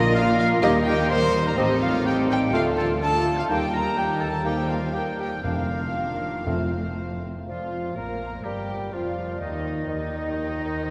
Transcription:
Already playing: A#1 A#2 F3 A#3 F4 A#4 D#5
0.15 F3 A#3 F4 A#4 F5
0.38 F4 F5
0.62 D#2 D#3 G3 A#3 D#4 G4 A#4 D#5
0.85 G4 G5
1.10 A#4 C5 C6
1.45 A#4 A#5
1.57 A1 A2 G3 C4 D#4 G4 A4 C5 D#5
1.82 F4 F5
2.05 G3 C4 D#4 G4 A4 G5
2.29 G4 G5
2.52 D2 F3 A3 D4 F4 A4 F5
2.77 A4 A5
3.01 F3 D4 F4 A4 A5
3.37 F4 F5
3.48 D#2 G3 A#3 D#4 G4 A#4 G5
3.73 A#4 A#5
3.97 G3 A#3 D#4 G4 A#4 G5
4.21 A4 A5
4.44 G3 A#3 D#4 G4 A#4 C5 G5
4.69 F4 F5
4.94 G3 A#3 D#4 G4 A#4 G5
5.19 G4 G5
5.43 F1 F2 D3 A#3 D4 F4 A#4 F5
5.95 D#3
6.46 F2 F3 A3 C4 C5
7.47 F1 F2 F3 F4 D5 F5
7.95 A#1 A#2 A#3 A#4 C5 A#5
8.44 G1 G2 G3 G4 A#4 G5
8.92 F1 F2 F3 F4 D5 F5
9.38 D#2 D#3 D#4 D#5
9.86 D#2 D#3 D#4 D#5
10.36 D#5
10.84 C5

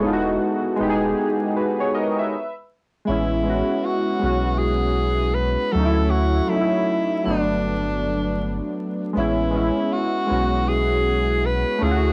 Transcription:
Already playing: E4 A4
0.00 E1 G#3 B3 D#4
0.06 F4
0.13 F#4
0.76 G#3 B3
0.80 D#1 D#4 G4
0.89 G#4
1.56 F#4 B4
1.80 G#4 C#5
1.94 A#4 D#5
2.19 B4 E5
3.05 A1 G#3 B3 E4
3.09 C#4 E4
3.43 G#3 B3
3.47 C#4 F#4
3.85 F#4
4.19 B1 G#3 B3
4.23 C#4 F#4
4.59 G#4
5.34 B4
5.72 D2 F#3 A3 A4
5.77 C#4 D#4
5.85 E4
6.11 F#4
6.48 F#3 A3 E4
6.52 C#4 D#4
6.61 E4
7.24 G1 F#3 A3 B3 D4
7.30 D4
9.13 A1 G#3 B3
9.18 C#4 E4
9.51 G#3 B3
9.56 C#4 E4
9.93 F#4
10.27 G#3 B3
10.31 B1 C#4 F#4
10.69 G#4
11.46 B4
11.78 D2 A3 C#4
11.83 E4 F4 G#4
11.91 F#4

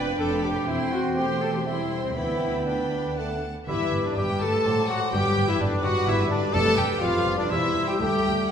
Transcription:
Already playing: F1 F2 D4 B4 G5
0.07 D5 F5 B5
0.18 F1 F2 D4 A4 B4 G5 A5 D6
0.31 D5 F5 B5
0.43 G4 B4 G5 D6
0.56 D5 F5 B5
0.66 E1 E2 C4 E4 C5 E5 G5 C6
0.91 F#4 F#5
1.16 A3 G4 C5 G5 C6
1.41 A4 A5
1.54 G4 G5
1.65 G3 E4 C5 E5 G5 C6
2.04 C4 C5
2.15 D2 B3 E4 D5 E5 G5 B5
2.66 D4 D5 G5 B5
3.16 A3 D5 F#5 A5
3.67 G1 G2 E3 G3 E4 B4 E5 D6
3.80 G2
3.93 G1 G2
4.04 G2 D3 D4 D5
4.17 G1 G2 G3 G4 B4 G5 D6
4.29 G2
4.41 G1 G2 A3 A4 A5
4.54 G2
4.65 A1 A2 F#3 C5 D6
4.77 A2
4.89 F#3 F#4 F#5
5.12 G1 G2 G3 G4 B4 G5 D6
5.25 G2
5.36 G1 G2
5.48 G2 E3 E4 E5
5.59 G1 G2 D3 G3 D4 B4 D5 D6
5.72 G2
5.83 G1 G2 F#3 F#4 F#5
5.96 G2
6.07 G1 G2 E3 E4 E5
6.19 G2
6.30 D3 D4 D5
6.53 F1 F2 G3 A3 A4 B4 A5 D6
6.66 F2
6.77 F1 F2 G3 G4 G5
6.90 F2
7.01 F1 F2 F3 G3 F4 B4 F5 D6
7.14 F2
7.26 F1 F2
7.37 F2 D3 D4 D5
7.50 E1 E2 E3 G3 E4 C5 E5 E6
7.63 E2
7.87 G3 G4 G5
7.99 D2 G3 A3 G4 A4 G5 D6
8.13 D2
8.26 D2
8.39 D2

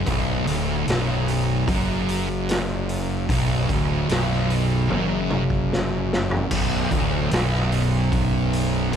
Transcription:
0.06 B0 B1, kick, open hi-hat
0.47 D1 D2, open hi-hat
0.87 B0 B1, snare, open hi-hat
1.28 open hi-hat
1.68 F#1 F#2, kick, open hi-hat
2.09 open hi-hat
2.49 snare, open hi-hat
2.89 open hi-hat
3.29 B0 B1, kick, open hi-hat
3.69 D1 D2, kick, open hi-hat
4.09 B0 B1, snare, open hi-hat
4.32 snare
4.50 open hi-hat
4.90 F#1 F#2, high tom
5.30 mid tom
5.50 kick
5.73 snare
6.13 snare
6.31 floor tom
6.50 B0 B1, kick, open hi-hat, crash
6.91 D1 D2, kick, open hi-hat
7.31 B0 B1, snare, open hi-hat
7.54 snare
7.72 open hi-hat
8.12 kick, open hi-hat
8.53 open hi-hat
8.93 D2, open hi-hat

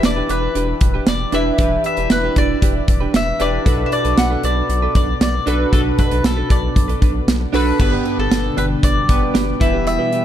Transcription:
Already playing: E3 D4 E4 G4 B4
0.03 E1 D5, snare, closed hi-hat
0.16 D4 G4 B4
0.29 E1 D4 G4 B4, closed hi-hat
0.42 muted clean electric guitar stroke
0.55 E1 D4 G4 B4, closed hi-hat
0.68 muted clean electric guitar stroke
0.81 E1, muted clean electric guitar stroke, kick, closed hi-hat
0.94 D4 G4 B4
1.07 E1 D5, muted clean electric guitar stroke, snare, closed hi-hat
1.20 muted clean electric guitar stroke
1.32 E1 D4 E4 G4 B4 E5, closed hi-hat
1.46 muted clean electric guitar stroke
1.58 E1 E3 D4 E4 G4 B4, kick, closed hi-hat
1.84 E5, muted clean electric guitar stroke, closed hi-hat
1.97 E1 D4 G4 B4, closed hi-hat
2.10 E1 B4, snare, closed hi-hat
2.23 D4 G4 B4
2.36 E1 D4 G4 B4 D5, kick, closed hi-hat
2.49 muted clean electric guitar stroke
2.62 E1 D4 G4 B4, kick, closed hi-hat
2.75 muted clean electric guitar stroke
2.88 E1, muted clean electric guitar stroke, kick, closed hi-hat
3.00 D4 G4 B4
3.14 E1 E5, snare, closed hi-hat
3.27 muted clean electric guitar stroke
3.40 E1 D4 E4 G4 B4 D5, closed hi-hat
3.53 muted clean electric guitar stroke
3.65 B1 B2 D4 F#4 A4 B4, kick, closed hi-hat
3.86 E5
3.92 D5, muted clean electric guitar stroke, closed hi-hat
4.04 B1 D4 A4 B4, closed hi-hat
4.18 B1 F#5, muted clean electric guitar stroke, snare, closed hi-hat
4.30 D4 A4 B4
4.43 B1 D4 A4 B4 D5, closed hi-hat
4.57 muted clean electric guitar stroke
4.69 B1, muted clean electric guitar stroke, closed hi-hat
4.82 D4 A4 B4
4.95 B1 D4 A4 B4 D5, kick, closed hi-hat
5.08 muted clean electric guitar stroke
5.21 B1 D5, snare, closed hi-hat
5.34 muted clean electric guitar stroke
5.46 B1 D4 F#4 A4 B4, closed hi-hat
5.59 muted clean electric guitar stroke
5.72 B1 B2 D4 F#4 A4 B4, kick, closed hi-hat
5.98 B4, muted clean electric guitar stroke, kick, closed hi-hat
6.11 B1 D4 A4 B4, closed hi-hat
6.24 B1 A4, muted clean electric guitar stroke, snare, closed hi-hat
6.37 D4 A4 B4
6.49 B1 D4 A4 B4 D5, kick, closed hi-hat
6.62 muted clean electric guitar stroke
6.75 B1, muted clean electric guitar stroke, kick, closed hi-hat
6.88 D4 A4 B4, closed hi-hat
7.01 B1 D4 A4 B4, kick, closed hi-hat
7.14 muted clean electric guitar stroke
7.28 B1, snare, closed hi-hat
7.40 muted clean electric guitar stroke
7.53 B1 D4 F#4 A4 B4, open hi-hat
7.66 muted clean electric guitar stroke
7.79 G1 G2 B2 D3 G3 B3 D4 G4 B4, muted clean electric guitar stroke, kick, crash
7.92 D4 G4 B4
8.05 D4 G4 B4, closed hi-hat
8.18 G1 A4, muted clean electric guitar stroke
8.31 G1, snare, closed hi-hat
8.44 muted clean electric guitar stroke
8.57 G1 D4 G4 B4, closed hi-hat
8.70 muted clean electric guitar stroke
8.83 G1 D5, muted clean electric guitar stroke, kick, closed hi-hat
8.96 muted clean electric guitar stroke
9.09 G1 B3 D4 G4 B4, kick, closed hi-hat
9.22 muted clean electric guitar stroke
9.34 G1 D4 G4 B4, snare, closed hi-hat
9.47 muted clean electric guitar stroke
9.60 E1 E3 B3 E4 G4 B4 E5, muted clean electric guitar stroke, kick, closed hi-hat
9.73 E4 G4 B4
9.87 E5, closed hi-hat
9.99 E4 G4 B4
10.12 E4 G4 B4, closed hi-hat

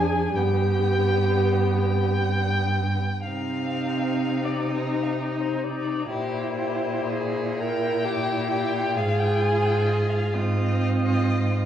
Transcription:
Already playing: F2 D4 G#4 G#5
0.33 G2 B3 G4 G5
1.79 G5
3.23 C3 C4 D#4 F5
4.45 D5
4.69 D#4 D#5
5.03 F5
5.13 D#5
5.22 D5
5.30 D#5
5.40 C5
5.64 D5
6.09 A#2 E4 G4 C5
6.58 G4
7.09 G#4
7.59 E4 A#4 G5
8.05 G4
8.50 G4
8.95 G#2 F4 G#4 F5
9.19 G5
9.41 G#5
9.64 G5
9.87 D#5
10.10 F5
10.34 G#2 C4 F4 D#5

